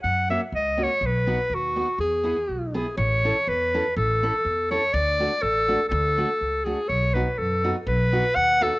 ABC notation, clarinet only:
X:1
M:2/4
L:1/8
Q:1/4=123
K:E
V:1 name="Clarinet"
f e d c | B2 F2 | G3 G | [K:A] c2 B2 |
A3 c | d2 A2 | A3 G | c B A2 |
B2 f A |]